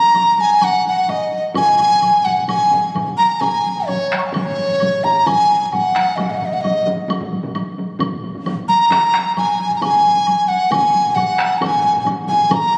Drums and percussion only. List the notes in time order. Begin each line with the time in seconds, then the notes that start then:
0.02 taiko high
0.14 taiko low-mid, taiko high, high woodblock
0.27 taiko high
0.38 taiko low-mid, taiko high
0.49 taiko low-mid, taiko high
0.61 taiko low-mid, taiko high, high woodblock
0.73 taiko high
0.85 taiko low-mid, taiko high
0.97 taiko high
1.08 taiko low-mid, taiko high, high woodblock
1.20 taiko high
1.32 taiko high
1.43 taiko high
1.54 taiko, taiko low-mid, taiko mid, taiko high, high woodblock
1.67 taiko low-mid, taiko mid
1.79 taiko low-mid, taiko mid, taiko high, high woodblock
1.91 taiko low-mid, taiko mid, taiko high
2.02 taiko low-mid, taiko mid, taiko high, high woodblock
2.14 taiko high
2.25 taiko low-mid, taiko mid, taiko high
2.37 taiko low-mid, taiko mid, taiko high
2.48 taiko low-mid, taiko mid, taiko high, high woodblock
2.60 taiko high
2.71 taiko low-mid, taiko mid, taiko high
2.84 taiko high
2.95 taiko low-mid, taiko mid, taiko high, high woodblock
3.07 taiko low-mid, taiko mid, taiko high
3.19 taiko high
3.32 taiko high
3.41 taiko, taiko low-mid, taiko mid, taiko high, high woodblock
3.55 taiko high
3.66 taiko high
3.77 taiko low-mid, taiko mid
3.88 taiko low-mid, taiko mid, taiko high, high woodblock
4.12 taiko rim, taiko high
4.25 taiko high
4.33 taiko, taiko low-mid, taiko mid, taiko high, high woodblock
4.46 taiko low-mid, taiko mid
4.58 taiko low-mid, taiko mid, taiko high
4.69 taiko low-mid, taiko mid, taiko high
4.80 taiko low-mid, taiko mid, taiko high, high woodblock
4.93 taiko high
5.04 taiko low-mid, taiko mid, taiko high
5.17 taiko high
5.26 taiko, taiko low-mid, taiko mid, taiko high, high woodblock
5.40 taiko high
5.51 taiko high
5.61 taiko low-mid, taiko mid, taiko high
5.72 taiko low-mid, taiko mid, taiko high, high woodblock
5.86 taiko high
5.96 taiko rim, taiko high
6.09 taiko high
6.17 taiko, taiko low-mid, taiko mid, taiko high, high woodblock
6.29 taiko low-mid, taiko mid
6.41 taiko low-mid, taiko mid, taiko high
6.52 taiko low-mid, taiko mid, taiko high
6.64 taiko low-mid, taiko mid, taiko high, high woodblock
6.76 taiko high
6.86 taiko low-mid, taiko mid, taiko high
6.99 taiko high
7.08 taiko, taiko high, high woodblock
7.21 taiko low-mid, taiko mid
7.33 taiko high
7.43 taiko low-mid, taiko mid, taiko high
7.55 taiko high, high woodblock
7.67 taiko high
7.78 taiko high
7.90 taiko high
7.99 taiko, taiko low-mid, taiko mid, taiko high, high woodblock
8.11 taiko low-mid, taiko mid
8.23 taiko low-mid, taiko mid, taiko high
8.35 taiko low-mid, taiko mid
8.46 taiko low-mid, taiko mid, taiko high, high woodblock
8.57 taiko high
8.69 taiko high
8.79 taiko high
8.90 taiko rim, taiko, taiko high, high woodblock
9.02 taiko high
9.13 taiko rim, taiko high, high woodblock
9.25 taiko high
9.37 taiko low-mid, taiko mid, taiko high, high woodblock
9.49 taiko high
9.60 taiko high
9.70 taiko low-mid, taiko mid, taiko high
9.82 taiko, taiko low-mid, taiko mid, taiko high, high woodblock
9.93 taiko high
10.05 taiko low-mid, taiko mid, taiko high
10.16 taiko low-mid, taiko mid, taiko high
10.27 taiko high, high woodblock
10.39 taiko high
10.50 taiko high
10.62 taiko high
10.71 taiko, taiko low-mid, taiko mid, taiko high, high woodblock
10.83 taiko high
10.95 taiko high
11.05 taiko low-mid, taiko mid, taiko high
11.16 taiko low-mid, taiko mid, taiko high, high woodblock
11.28 taiko high
11.38 taiko rim, taiko high
11.49 taiko high
11.61 taiko, taiko low-mid, taiko mid, taiko high, high woodblock
11.72 taiko low-mid, taiko mid
11.83 taiko low-mid, taiko mid, taiko high
11.93 taiko low-mid, taiko mid, taiko high
12.05 taiko low-mid, taiko mid, taiko high, high woodblock
12.16 taiko high
12.27 taiko low-mid, taiko mid, taiko high
12.38 taiko high
12.50 taiko, taiko low-mid, taiko mid, taiko high, high woodblock
12.61 taiko high
12.72 taiko high